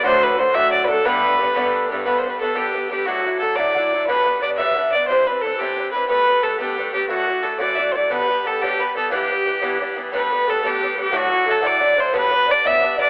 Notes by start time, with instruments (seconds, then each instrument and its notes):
0.03 twelve-string acoustic guitar D2 A2 F#3 A3 D4 F#4, cello D2, fiddle C5, bouzouki C5, flute C5
0.23 fiddle B4, flute B4
0.36 cello D2, twelve-string acoustic guitar F#3 A3 D4 F#4, bouzouki C5, fiddle C5
0.41 flute C5
0.52 twelve-string acoustic guitar D2 A2 F#3 A3 D4 F#4, cello D2, bouzouki E5, fiddle E5, flute E5
0.72 fiddle D5, bouzouki D5
0.84 twelve-string acoustic guitar F#3 D4, fiddle A4 B4
0.89 cello D2, twelve-string acoustic guitar A3 F#4, bouzouki A4, flute A4
1.04 twelve-string acoustic guitar G2 D3 G3 A3 B3 D4, cello G2, bouzouki B4, fiddle B4, flute B4
1.39 cello G2, twelve-string acoustic guitar G3 A3 B3 D4
1.54 twelve-string acoustic guitar G2 D3 G3 A3 B3 D4, cello G2
1.89 cello G2, twelve-string acoustic guitar G3 A3 B3 D4
2.05 twelve-string acoustic guitar G2 D3 G3 A3 B3 D4, fiddle B4, flute B4
2.18 fiddle C5
2.23 twelve-string acoustic guitar G3 A3 B3 D4
2.30 flute B4, fiddle B4
2.40 twelve-string acoustic guitar G3 A3 B3 D4, flute A4, fiddle A4
2.55 twelve-string acoustic guitar G2 D3 G3 A3 B3 D4, flute G4, fiddle G4
2.72 twelve-string acoustic guitar G3 A3 B3 D4
2.89 twelve-string acoustic guitar G3 A3 B3 D4, fiddle G4, flute G4
3.06 twelve-string acoustic guitar D2 A2 F#3 A3 D4 E4, fiddle F#4, flute F#4
3.24 twelve-string acoustic guitar F#3 A3 D4 E4
3.40 twelve-string acoustic guitar F#3 A3 D4 E4, fiddle A4, flute A4
3.56 twelve-string acoustic guitar D2 A2 F#3 A3 D4 E4, fiddle D5, flute D5
3.75 twelve-string acoustic guitar F#3 A3 D4 E4
3.92 twelve-string acoustic guitar F#3 A3 D4 E4
4.07 twelve-string acoustic guitar D2 A2 D3 G3 B3 D4, fiddle B4, flute B4
4.24 twelve-string acoustic guitar D3 G3 B3 D4
4.40 twelve-string acoustic guitar D3 G3 B3 D4, fiddle D5, flute D5
4.57 twelve-string acoustic guitar D2 A2 D3 G3 B3 D4, fiddle E5, flute E5
4.75 twelve-string acoustic guitar D3 G3 B3 D4
4.92 twelve-string acoustic guitar D3 G3 B3 D4, fiddle D5, flute D5
5.08 twelve-string acoustic guitar C3 E3 G3 C4 D4, fiddle C5, flute C5
5.23 flute C5
5.27 twelve-string acoustic guitar E3 G3 C4 D4, fiddle B4, flute B4
5.41 twelve-string acoustic guitar E3 G3, fiddle A4, flute A4
5.46 twelve-string acoustic guitar C4 D4
5.58 twelve-string acoustic guitar C3 E3 G3 C4, flute G4, fiddle G4
5.63 twelve-string acoustic guitar D4
5.76 twelve-string acoustic guitar E3 G3 C4 D4
5.91 twelve-string acoustic guitar E3 G3 C4, fiddle B4, flute B4
5.96 twelve-string acoustic guitar D4
6.08 twelve-string acoustic guitar G3 A3 B3 D4, fiddle B4, flute B4
6.27 twelve-string acoustic guitar G3 A3 B3 D4
6.42 twelve-string acoustic guitar G3 A3 B3 D4, fiddle A4, flute A4
6.58 twelve-string acoustic guitar G3 A3 B3 D4, fiddle G4, flute G4
6.77 twelve-string acoustic guitar G3 A3 B3 D4
6.93 twelve-string acoustic guitar G3 A3 B3 D4, fiddle G4, flute G4
7.08 twelve-string acoustic guitar D2 A2 E3 A3 D4 F#4, fiddle F#4, flute F#4
7.27 twelve-string acoustic guitar E3 A3 D4 F#4
7.42 twelve-string acoustic guitar E3 A3 D4 F#4, fiddle A4
7.46 flute A4
7.59 twelve-string acoustic guitar D2 A2 E3 A3 D4 F#4, fiddle D5, flute D5
7.75 twelve-string acoustic guitar E3 A3 D4, fiddle D5 E5
7.79 twelve-string acoustic guitar F#4, flute D5
7.92 twelve-string acoustic guitar E3 A3, fiddle C5 D5, flute D5
7.96 twelve-string acoustic guitar D4 F#4
8.09 twelve-string acoustic guitar D2 A2 D3 G3 B3 G4, fiddle B4, flute B4
8.28 twelve-string acoustic guitar D3 G3 B3 G4
8.44 twelve-string acoustic guitar D3 G3 B3 G4, flute A4, fiddle A4
8.61 twelve-string acoustic guitar D2 A2 D3 G3 B3 G4, flute G4, fiddle G4
8.79 twelve-string acoustic guitar D3 G3 B3 G4, fiddle B4
8.95 twelve-string acoustic guitar D3 G3 B3 G4, fiddle A4, flute A4
9.10 twelve-string acoustic guitar G2 D3 E3 G3 B3 D4, fiddle G4, flute G4
9.30 twelve-string acoustic guitar E3 G3 B3 D4
9.45 twelve-string acoustic guitar E3 G3 B3 D4
9.61 twelve-string acoustic guitar G2 D3 E3 G3 B3 D4
9.79 twelve-string acoustic guitar E3 G3 B3 D4
9.95 twelve-string acoustic guitar E3 G3 B3 D4
10.12 twelve-string acoustic guitar G3 A3 B3 D4, bouzouki B4, flute B4, fiddle B4
10.29 twelve-string acoustic guitar G3 A3 B3, bouzouki B4, flute B4
10.34 twelve-string acoustic guitar D4
10.47 twelve-string acoustic guitar G3 A3 B3 D4, flute A4, bouzouki A4, fiddle A4
10.63 twelve-string acoustic guitar G3 A3 B3 D4, flute G4, fiddle G4
10.76 bouzouki G4
10.81 twelve-string acoustic guitar G3 A3 B3 D4
10.96 twelve-string acoustic guitar G3 A3 B3 D4, bouzouki G4, flute G4
11.02 fiddle G4
11.11 twelve-string acoustic guitar D2 A2 F#3 A3 D4 E4, flute F#4
11.16 fiddle F#4
11.30 twelve-string acoustic guitar F#3 A3 D4 E4
11.44 twelve-string acoustic guitar F#3 A3 D4 E4, flute A4
11.49 bouzouki A4, fiddle A4
11.61 twelve-string acoustic guitar D2 A2 F#3 A3 D4 E4, flute D5, bouzouki D5
11.67 fiddle D5
11.79 twelve-string acoustic guitar F#3 A3 D4 E4
11.95 twelve-string acoustic guitar F#3 A3 D4 E4, bouzouki C5, flute C5
12.00 fiddle C5
12.13 twelve-string acoustic guitar D2 A2 D3 G3 B3 D4, flute B4, bouzouki B4
12.17 fiddle B4
12.30 twelve-string acoustic guitar D3 G3 B3 D4
12.46 twelve-string acoustic guitar D3 G3 B3 D4, bouzouki D5, flute D5
12.51 fiddle D5
12.64 twelve-string acoustic guitar D2 A2 D3 G3 B3 D4, bouzouki E5, flute E5, fiddle E5
12.81 twelve-string acoustic guitar D3 G3 B3 D4
12.96 twelve-string acoustic guitar D3 G3 B3 D4, bouzouki D5, flute D5
13.01 fiddle D5